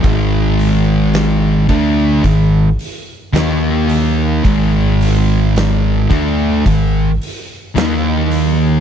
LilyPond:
<<
  \new Staff \with { instrumentName = "Distorted electric guitar" } { \clef bass \time 4/4 \key aes \lydian \tempo 4 = 54 <aes, ees aes>4. <d a d'>8 <aes, ees>8 r8 <ees bes ees'>4 | <aes, ees aes>4. <d a d'>8 <aes, ees>8 r8 <ees bes ees'>4 | }
  \new Staff \with { instrumentName = "Distorted electric guitar" } { \clef bass \time 4/4 \key aes \lydian <aes, ees aes>4. <d a d'>8 <aes, ees>8 r8 <ees bes ees'>4 | <aes, ees aes>4. <d a d'>8 <aes, ees>8 r8 <ees bes ees'>4 | }
  \new Staff \with { instrumentName = "Fingered electric bass" } { \clef bass \time 4/4 \key aes \lydian aes,,4. d,8 aes,,8 r8 ees,4 | aes,,4. d,8 aes,,8 r8 ees,4 | }
  \new DrumStaff \with { instrumentName = "Drums" } \drummode { \time 4/4 <hho bd>8 hho8 <hho sn>8 <hho bd>8 <hho bd>8 hho8 <hho sn>8 hho8 | <hho bd>8 hho8 <hho sn>8 <hho bd>8 <hho bd>8 hho8 <hho sn>8 hho8 | }
>>